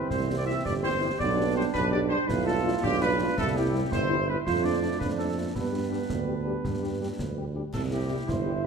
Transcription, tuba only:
0.11 C2
0.65 G1
1.20 B1
1.74 B1
2.28 B1
2.83 B1
3.38 C2
3.92 G1
4.47 F2
5.02 F2
5.56 G2
6.10 D2
6.64 G2
7.19 D2
7.74 C2
8.29 G1

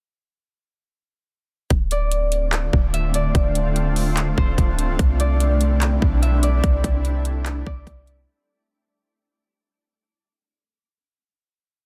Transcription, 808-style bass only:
1.70 D1
2.73 D1
3.35 D1
4.38 D1
4.58 D1
4.89 C1
4.99 C2
6.02 B1
6.64 C2
6.84 C2
7.67 C2
7.87 C2

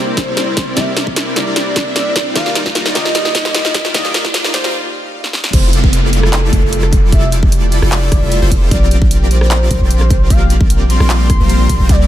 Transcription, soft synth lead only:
Already playing: C5
0.77 E5
1.36 D5
2.36 F5
2.95 D#5
3.95 D#5
4.54 C5
5.53 C5
6.13 A4
7.12 E5
7.72 D5
8.71 D5
9.31 C5
10.30 F5
10.90 C6
11.89 D5

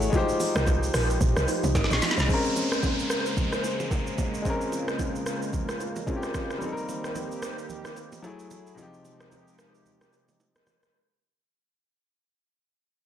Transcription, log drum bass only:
Already playing: G#1
0.56 C2
0.94 A#1
1.21 A#1
1.37 C2
1.64 C2
1.75 G#1
1.91 A#1
2.18 C2

